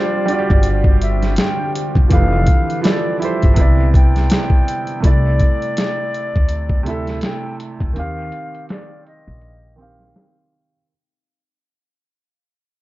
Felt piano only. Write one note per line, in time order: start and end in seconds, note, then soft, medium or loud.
0.00 0.26 G3 medium
0.00 0.28 D4 medium
0.00 0.30 F4 medium
0.00 2.12 C5 medium
0.26 1.53 G3 medium
0.26 1.54 D4 medium
0.30 1.55 F4 medium
0.30 0.37 F#4 medium
0.39 1.59 G4 loud
2.08 2.74 E3 medium
2.08 2.73 F3 medium
2.08 2.75 G4 medium
2.13 2.76 A4 medium
2.13 2.76 B4 medium
2.81 3.14 F3 medium
2.81 3.15 E4 medium
2.81 3.16 G4 medium
2.86 3.17 A4 medium
2.86 3.18 D5 medium
3.18 3.56 F3 medium
3.18 3.56 E4 medium
3.18 3.57 G4 medium
3.23 3.58 A4 medium
3.23 3.59 C5 medium
3.54 4.82 C3 medium
3.54 4.83 B3 medium
3.59 4.84 E4 medium
3.59 4.85 D5 medium
5.00 6.28 C3 medium
5.00 6.29 A3 medium
5.05 6.30 E4 medium
5.05 6.32 D5 medium
6.83 7.80 C3 medium
6.83 7.81 A3 medium
6.87 7.82 E4 medium
6.87 7.84 A4 medium
7.93 9.21 D#3 medium
7.93 9.22 C4 medium
7.98 9.23 G4 medium
7.98 9.24 F5 medium
9.76 10.73 D#3 medium
9.76 10.74 C4 medium
9.80 10.75 G4 medium
9.80 10.76 F5 medium